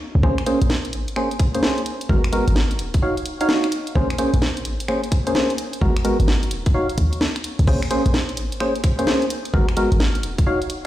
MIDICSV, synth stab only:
0, 0, Header, 1, 2, 480
1, 0, Start_track
1, 0, Key_signature, -5, "minor"
1, 0, Tempo, 465116
1, 240, Time_signature, 4, 2, 24, 8
1, 11212, End_track
2, 0, Start_track
2, 0, Title_t, "Synth stab"
2, 0, Program_c, 0, 62
2, 239, Note_on_c, 0, 61, 83
2, 239, Note_on_c, 0, 72, 101
2, 240, Note_on_c, 0, 58, 90
2, 240, Note_on_c, 0, 68, 80
2, 375, Note_off_c, 0, 58, 0
2, 375, Note_off_c, 0, 61, 0
2, 375, Note_off_c, 0, 68, 0
2, 375, Note_off_c, 0, 72, 0
2, 480, Note_on_c, 0, 58, 95
2, 480, Note_on_c, 0, 61, 86
2, 480, Note_on_c, 0, 68, 86
2, 480, Note_on_c, 0, 72, 99
2, 615, Note_off_c, 0, 58, 0
2, 615, Note_off_c, 0, 61, 0
2, 615, Note_off_c, 0, 68, 0
2, 615, Note_off_c, 0, 72, 0
2, 1200, Note_on_c, 0, 58, 76
2, 1200, Note_on_c, 0, 61, 68
2, 1200, Note_on_c, 0, 68, 70
2, 1200, Note_on_c, 0, 72, 82
2, 1335, Note_off_c, 0, 58, 0
2, 1335, Note_off_c, 0, 61, 0
2, 1335, Note_off_c, 0, 68, 0
2, 1335, Note_off_c, 0, 72, 0
2, 1596, Note_on_c, 0, 58, 87
2, 1596, Note_on_c, 0, 61, 79
2, 1596, Note_on_c, 0, 68, 78
2, 1596, Note_on_c, 0, 72, 95
2, 1668, Note_off_c, 0, 58, 0
2, 1668, Note_off_c, 0, 61, 0
2, 1668, Note_off_c, 0, 68, 0
2, 1668, Note_off_c, 0, 72, 0
2, 1681, Note_on_c, 0, 58, 76
2, 1681, Note_on_c, 0, 61, 70
2, 1681, Note_on_c, 0, 68, 70
2, 1681, Note_on_c, 0, 72, 85
2, 1869, Note_off_c, 0, 58, 0
2, 1869, Note_off_c, 0, 61, 0
2, 1869, Note_off_c, 0, 68, 0
2, 1869, Note_off_c, 0, 72, 0
2, 2160, Note_on_c, 0, 70, 99
2, 2161, Note_on_c, 0, 56, 90
2, 2161, Note_on_c, 0, 59, 82
2, 2161, Note_on_c, 0, 66, 84
2, 2295, Note_off_c, 0, 56, 0
2, 2295, Note_off_c, 0, 59, 0
2, 2295, Note_off_c, 0, 66, 0
2, 2295, Note_off_c, 0, 70, 0
2, 2401, Note_on_c, 0, 56, 92
2, 2401, Note_on_c, 0, 59, 86
2, 2401, Note_on_c, 0, 66, 82
2, 2401, Note_on_c, 0, 70, 101
2, 2535, Note_off_c, 0, 56, 0
2, 2535, Note_off_c, 0, 59, 0
2, 2535, Note_off_c, 0, 66, 0
2, 2535, Note_off_c, 0, 70, 0
2, 3121, Note_on_c, 0, 63, 74
2, 3121, Note_on_c, 0, 73, 72
2, 3121, Note_on_c, 0, 77, 84
2, 3122, Note_on_c, 0, 66, 70
2, 3255, Note_off_c, 0, 63, 0
2, 3256, Note_off_c, 0, 66, 0
2, 3256, Note_off_c, 0, 73, 0
2, 3256, Note_off_c, 0, 77, 0
2, 3517, Note_on_c, 0, 63, 87
2, 3517, Note_on_c, 0, 66, 80
2, 3517, Note_on_c, 0, 73, 80
2, 3517, Note_on_c, 0, 77, 96
2, 3588, Note_off_c, 0, 63, 0
2, 3588, Note_off_c, 0, 66, 0
2, 3588, Note_off_c, 0, 73, 0
2, 3588, Note_off_c, 0, 77, 0
2, 3601, Note_on_c, 0, 63, 78
2, 3601, Note_on_c, 0, 66, 70
2, 3601, Note_on_c, 0, 73, 70
2, 3601, Note_on_c, 0, 77, 85
2, 3789, Note_off_c, 0, 63, 0
2, 3789, Note_off_c, 0, 66, 0
2, 3789, Note_off_c, 0, 73, 0
2, 3789, Note_off_c, 0, 77, 0
2, 4080, Note_on_c, 0, 61, 83
2, 4080, Note_on_c, 0, 68, 83
2, 4081, Note_on_c, 0, 58, 91
2, 4081, Note_on_c, 0, 72, 97
2, 4215, Note_off_c, 0, 58, 0
2, 4215, Note_off_c, 0, 61, 0
2, 4215, Note_off_c, 0, 68, 0
2, 4215, Note_off_c, 0, 72, 0
2, 4320, Note_on_c, 0, 58, 92
2, 4320, Note_on_c, 0, 68, 88
2, 4320, Note_on_c, 0, 72, 105
2, 4321, Note_on_c, 0, 61, 84
2, 4455, Note_off_c, 0, 58, 0
2, 4455, Note_off_c, 0, 61, 0
2, 4455, Note_off_c, 0, 68, 0
2, 4455, Note_off_c, 0, 72, 0
2, 5040, Note_on_c, 0, 58, 79
2, 5040, Note_on_c, 0, 61, 69
2, 5040, Note_on_c, 0, 68, 69
2, 5040, Note_on_c, 0, 72, 83
2, 5175, Note_off_c, 0, 58, 0
2, 5175, Note_off_c, 0, 61, 0
2, 5175, Note_off_c, 0, 68, 0
2, 5175, Note_off_c, 0, 72, 0
2, 5436, Note_on_c, 0, 58, 85
2, 5436, Note_on_c, 0, 61, 76
2, 5436, Note_on_c, 0, 68, 80
2, 5436, Note_on_c, 0, 72, 93
2, 5508, Note_off_c, 0, 58, 0
2, 5508, Note_off_c, 0, 61, 0
2, 5508, Note_off_c, 0, 68, 0
2, 5508, Note_off_c, 0, 72, 0
2, 5521, Note_on_c, 0, 58, 75
2, 5521, Note_on_c, 0, 61, 73
2, 5521, Note_on_c, 0, 68, 73
2, 5521, Note_on_c, 0, 72, 83
2, 5709, Note_off_c, 0, 58, 0
2, 5709, Note_off_c, 0, 61, 0
2, 5709, Note_off_c, 0, 68, 0
2, 5709, Note_off_c, 0, 72, 0
2, 6000, Note_on_c, 0, 56, 88
2, 6000, Note_on_c, 0, 59, 83
2, 6000, Note_on_c, 0, 66, 85
2, 6000, Note_on_c, 0, 70, 97
2, 6135, Note_off_c, 0, 56, 0
2, 6135, Note_off_c, 0, 59, 0
2, 6135, Note_off_c, 0, 66, 0
2, 6135, Note_off_c, 0, 70, 0
2, 6240, Note_on_c, 0, 56, 91
2, 6240, Note_on_c, 0, 59, 85
2, 6240, Note_on_c, 0, 66, 85
2, 6240, Note_on_c, 0, 70, 103
2, 6375, Note_off_c, 0, 56, 0
2, 6375, Note_off_c, 0, 59, 0
2, 6375, Note_off_c, 0, 66, 0
2, 6375, Note_off_c, 0, 70, 0
2, 6960, Note_on_c, 0, 63, 75
2, 6960, Note_on_c, 0, 66, 68
2, 6960, Note_on_c, 0, 73, 69
2, 6960, Note_on_c, 0, 77, 86
2, 7094, Note_off_c, 0, 73, 0
2, 7095, Note_off_c, 0, 63, 0
2, 7095, Note_off_c, 0, 66, 0
2, 7095, Note_off_c, 0, 77, 0
2, 7920, Note_on_c, 0, 58, 87
2, 7920, Note_on_c, 0, 61, 81
2, 7920, Note_on_c, 0, 72, 102
2, 7921, Note_on_c, 0, 68, 81
2, 8055, Note_off_c, 0, 58, 0
2, 8055, Note_off_c, 0, 61, 0
2, 8055, Note_off_c, 0, 68, 0
2, 8055, Note_off_c, 0, 72, 0
2, 8159, Note_on_c, 0, 58, 93
2, 8159, Note_on_c, 0, 61, 86
2, 8159, Note_on_c, 0, 68, 87
2, 8159, Note_on_c, 0, 72, 104
2, 8294, Note_off_c, 0, 58, 0
2, 8294, Note_off_c, 0, 61, 0
2, 8294, Note_off_c, 0, 68, 0
2, 8294, Note_off_c, 0, 72, 0
2, 8880, Note_on_c, 0, 68, 70
2, 8881, Note_on_c, 0, 58, 75
2, 8881, Note_on_c, 0, 61, 72
2, 8881, Note_on_c, 0, 72, 83
2, 9015, Note_off_c, 0, 58, 0
2, 9015, Note_off_c, 0, 61, 0
2, 9015, Note_off_c, 0, 68, 0
2, 9015, Note_off_c, 0, 72, 0
2, 9275, Note_on_c, 0, 58, 90
2, 9275, Note_on_c, 0, 61, 80
2, 9275, Note_on_c, 0, 72, 94
2, 9276, Note_on_c, 0, 68, 79
2, 9347, Note_off_c, 0, 58, 0
2, 9347, Note_off_c, 0, 61, 0
2, 9347, Note_off_c, 0, 72, 0
2, 9348, Note_off_c, 0, 68, 0
2, 9360, Note_on_c, 0, 58, 76
2, 9360, Note_on_c, 0, 61, 71
2, 9360, Note_on_c, 0, 68, 74
2, 9360, Note_on_c, 0, 72, 85
2, 9548, Note_off_c, 0, 58, 0
2, 9548, Note_off_c, 0, 61, 0
2, 9548, Note_off_c, 0, 68, 0
2, 9548, Note_off_c, 0, 72, 0
2, 9841, Note_on_c, 0, 56, 89
2, 9841, Note_on_c, 0, 59, 82
2, 9841, Note_on_c, 0, 66, 81
2, 9842, Note_on_c, 0, 70, 101
2, 9975, Note_off_c, 0, 56, 0
2, 9976, Note_off_c, 0, 59, 0
2, 9976, Note_off_c, 0, 66, 0
2, 9976, Note_off_c, 0, 70, 0
2, 10081, Note_on_c, 0, 56, 94
2, 10081, Note_on_c, 0, 59, 87
2, 10081, Note_on_c, 0, 66, 85
2, 10081, Note_on_c, 0, 70, 106
2, 10215, Note_off_c, 0, 56, 0
2, 10215, Note_off_c, 0, 59, 0
2, 10215, Note_off_c, 0, 66, 0
2, 10215, Note_off_c, 0, 70, 0
2, 10801, Note_on_c, 0, 63, 75
2, 10801, Note_on_c, 0, 66, 67
2, 10801, Note_on_c, 0, 73, 69
2, 10801, Note_on_c, 0, 77, 85
2, 10935, Note_off_c, 0, 63, 0
2, 10935, Note_off_c, 0, 66, 0
2, 10935, Note_off_c, 0, 73, 0
2, 10935, Note_off_c, 0, 77, 0
2, 11212, End_track
0, 0, End_of_file